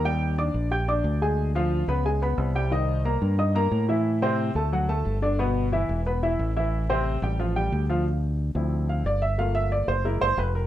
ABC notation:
X:1
M:4/4
L:1/8
Q:1/4=180
K:Dphr
V:1 name="Upright piano"
[G,Gg]2 [Ddd']2 [Ggg'] [Ddd']2 [_A,_A_a]- | [_A,_A_a] [F,Ff]2 [=B,=B=b] [^G,^G^g] [B,Bb]2 [=G,=G=g] | [E,Ee]2 [B,Bb]2 [Eee'] [B,Bb]2 [=E,=E=e]- | [=E,=E=e] [C,Cc]2 [A,Aa] [^F,^F^f] [A,Aa]2 [D,Dd] |
[=B,,=B,=B]2 [=E,=E=e]2 [B,B=b] [E,Ee]2 [E,Ee]- | [=E,=E=e] [C,Cc]2 [G,Gg] [F,Ff] [G,Gg]2 [F,Ff] | [K:Dm] z4 z f d e | f e d c ^A c =B A |]
V:2 name="Upright piano"
z8 | z8 | z8 | z8 |
z8 | z8 | [K:Dm] z3 [F,CE]3 z2 | [A,B,F]4 [^G,^A,E] z3 |]
V:3 name="Fingered electric bass" clef=bass
E,,3 B,,,3 D,,2- | D,,3 ^C,,3 =C,,2- | C,,3 G,,3 A,,2- | A,,3 D,,3 G,,,2- |
G,,,3 =E,,,3 A,,,2- | A,,,3 A,,,3 D,,2- | [K:Dm] D,,3 D,,3 G,,,2- | G,,,3 ^F,,,2 F,,, =F,,,2 |]